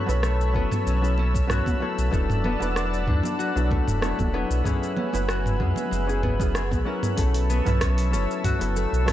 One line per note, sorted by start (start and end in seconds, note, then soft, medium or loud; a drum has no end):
0.00 0.23 A3 medium
0.00 0.55 B3 medium
0.00 0.87 C#4 medium
0.00 1.50 F#4 medium
0.00 7.19 B4 medium
0.00 2.09 C#5 medium
0.00 4.61 A5 medium
0.00 2.09 B5 medium
0.00 7.19 B5 medium
0.00 7.14 E6 medium
0.06 0.56 B1 medium
0.06 0.50 F#3 medium
0.06 0.51 B3 medium
0.06 0.51 C#4 medium
0.06 0.51 E4 medium
0.06 0.51 B4 loud
0.06 muted conga soft
0.06 shaker medium
0.23 1.82 A3 medium
0.23 cross-stick loud
0.23 shaker medium
0.41 shaker soft
0.53 0.69 F#1 medium
0.53 0.98 F#3 medium
0.53 0.98 B3 medium
0.53 2.45 B3 loud
0.53 0.99 C#4 medium
0.53 0.99 E4 medium
0.53 0.99 A4 medium
0.53 kick medium
0.72 mid tom medium
0.72 high conga medium
0.72 low conga medium
0.72 shaker medium
0.86 1.62 B1 loud
0.86 1.18 C#4 medium
0.86 shaker medium
1.01 1.45 F#3 medium
1.01 1.45 B3 medium
1.01 1.45 C#4 medium
1.01 1.46 E4 medium
1.01 1.46 A4 medium
1.01 shaker soft
1.18 2.82 C#4 medium
1.18 muted conga soft
1.35 kick loud
1.35 shaker medium
1.47 1.76 F#3 medium
1.47 1.77 B3 medium
1.47 1.77 C#4 medium
1.47 1.77 E4 medium
1.47 3.39 F#4 medium
1.47 1.77 C#5 medium
1.47 cross-stick medium
1.47 mid tom medium
1.47 shaker medium
1.66 kick loud
1.66 high conga medium
1.66 shaker soft
1.80 2.08 F#3 medium
1.80 2.13 A3 medium
1.80 2.09 B3 medium
1.80 2.09 C#4 medium
1.80 2.09 E4 medium
1.80 2.10 C#5 medium
1.98 2.10 B1 medium
1.98 shaker medium
2.11 2.56 E1 loud
2.11 2.56 F#3 medium
2.11 3.70 A3 medium
2.11 2.56 B3 medium
2.11 2.57 D4 medium
2.11 2.57 E4 medium
2.11 2.57 A4 medium
2.11 4.62 D5 medium
2.11 7.14 F#5 medium
2.11 kick loud
2.11 shaker medium
2.30 mid tom medium
2.30 shaker soft
2.44 4.33 B3 medium
2.44 high conga medium
2.44 low conga medium
2.59 3.09 E1 medium
2.59 3.03 F#3 medium
2.59 3.03 B3 medium
2.59 3.03 D4 medium
2.59 3.04 E4 medium
2.59 3.04 B4 medium
2.59 muted conga soft
2.59 shaker medium
2.76 3.08 D4 medium
2.76 cross-stick loud
2.76 shaker medium
2.94 shaker soft
3.07 3.21 E2 medium
3.07 3.51 F#3 medium
3.07 3.52 B3 medium
3.07 3.52 D4 medium
3.07 4.72 D4 medium
3.07 3.52 E4 medium
3.07 3.52 A4 medium
3.07 kick medium
3.07 mid tom medium
3.23 high conga medium
3.23 low conga medium
3.23 shaker medium
3.39 5.28 F#4 loud
3.39 shaker medium
3.55 3.82 B1 loud
3.55 3.98 F#3 medium
3.55 3.98 B3 medium
3.55 3.99 D4 medium
3.55 3.99 E4 medium
3.55 3.99 A4 medium
3.55 shaker soft
3.71 4.02 A3 medium
3.71 kick loud
3.71 muted conga soft
3.88 4.13 E1 loud
3.88 mid tom medium
3.88 shaker medium
4.01 4.30 F#3 medium
4.01 5.66 A3 medium
4.01 4.30 B3 medium
4.01 4.30 D4 medium
4.01 4.30 E4 medium
4.01 4.31 C#5 medium
4.01 cross-stick loud
4.01 shaker soft
4.19 4.45 E1 medium
4.19 kick loud
4.19 high conga medium
4.19 low conga medium
4.19 shaker soft
4.33 4.61 F#3 medium
4.33 4.61 B3 medium
4.33 6.23 B3 loud
4.33 4.62 D4 medium
4.33 4.62 E4 medium
4.33 4.62 C#5 loud
4.50 4.62 B1 loud
4.50 shaker medium
4.64 5.09 F#3 medium
4.64 5.09 B3 medium
4.64 5.09 C#4 medium
4.64 4.97 C#4 medium
4.64 5.10 E4 medium
4.64 5.10 G#4 medium
4.64 7.16 B4 medium
4.64 7.16 G#5 medium
4.64 kick loud
4.64 mid tom medium
4.64 shaker soft
4.83 shaker soft
4.97 6.86 C#4 medium
4.97 high conga medium
4.97 low conga medium
5.13 5.61 F#1 medium
5.13 5.56 F#3 medium
5.13 5.56 B3 medium
5.13 5.56 C#4 medium
5.13 5.57 E4 medium
5.13 5.57 B4 medium
5.13 muted conga soft
5.13 shaker medium
5.28 7.72 F#4 loud
5.28 cross-stick loud
5.28 shaker medium
5.46 mid tom medium
5.46 shaker soft
5.59 5.74 F#2 medium
5.59 6.04 F#3 medium
5.59 5.90 G#3 medium
5.59 6.04 B3 medium
5.59 6.04 C#4 medium
5.59 6.05 E4 medium
5.59 6.05 G#4 medium
5.59 kick medium
5.76 high conga medium
5.76 low conga medium
5.76 shaker medium
5.91 6.73 F#1 medium
5.91 7.23 G#3 medium
5.91 shaker medium
6.07 6.36 F#3 medium
6.07 6.36 B3 medium
6.07 6.36 C#4 medium
6.07 6.37 E4 medium
6.07 6.37 G#4 medium
6.07 shaker soft
6.23 7.49 B3 medium
6.23 kick medium
6.23 mid tom medium
6.23 muted conga medium
6.39 6.60 F#3 medium
6.39 6.60 B3 medium
6.39 6.60 C#4 medium
6.39 6.60 E4 medium
6.39 6.61 G#4 loud
6.39 kick loud
6.39 shaker medium
6.55 7.24 G#4 medium
6.55 cross-stick loud
6.55 shaker medium
6.71 6.84 B1 medium
6.71 kick medium
6.71 muted conga soft
6.71 high conga medium
6.71 shaker soft
6.85 7.14 F#3 medium
6.85 7.14 B3 medium
6.85 7.81 C#4 medium
6.85 7.14 C#4 medium
6.85 7.14 E4 medium
6.85 7.15 A#4 medium
7.03 mid tom medium
7.03 muted conga medium
7.03 shaker medium
7.16 7.62 B1 medium
7.16 7.61 F#3 medium
7.16 8.76 A3 medium
7.16 7.62 B3 medium
7.16 7.62 C#4 medium
7.16 7.62 E4 medium
7.16 7.63 A4 loud
7.16 9.13 B4 medium
7.16 9.13 E5 medium
7.16 9.13 A5 medium
7.16 9.13 C#6 medium
7.16 9.13 E6 medium
7.16 kick loud
7.16 open hi-hat medium
7.16 shaker soft
7.34 open hi-hat soft
7.34 shaker soft
7.49 9.13 B3 medium
7.49 shaker medium
7.65 8.14 B1 medium
7.65 8.08 F#3 medium
7.65 8.09 B3 medium
7.65 8.09 C#4 medium
7.65 8.09 E4 medium
7.65 8.10 B4 loud
7.65 mid tom medium
7.65 open hi-hat soft
7.65 shaker soft
7.81 8.12 C#4 medium
7.81 kick loud
7.81 cross-stick loud
7.81 open hi-hat medium
7.81 shaker soft
7.98 open hi-hat soft
7.98 shaker soft
8.11 8.27 F#1 medium
8.11 8.56 F#3 medium
8.11 8.56 B3 medium
8.11 8.57 C#4 medium
8.11 9.13 C#4 medium
8.11 8.57 E4 medium
8.11 8.57 A4 medium
8.11 shaker medium
8.31 shaker soft
8.44 9.13 F#4 medium
8.44 kick loud
8.44 mid tom medium
8.44 open hi-hat medium
8.44 shaker soft
8.59 8.87 F#1 loud
8.59 9.03 F#3 medium
8.59 9.03 B3 medium
8.59 9.03 C#4 medium
8.59 9.04 E4 medium
8.59 9.04 A4 medium
8.59 open hi-hat soft
8.59 shaker soft
8.76 9.07 A3 medium
8.76 shaker medium
8.92 9.13 B1 loud
8.92 shaker soft
9.06 9.13 F#3 medium
9.06 9.13 A3 medium
9.06 9.13 B3 medium
9.06 9.13 C#4 medium
9.06 9.13 E4 medium
9.06 9.13 C#5 loud
9.06 kick loud
9.06 cross-stick loud
9.06 open hi-hat medium
9.06 shaker soft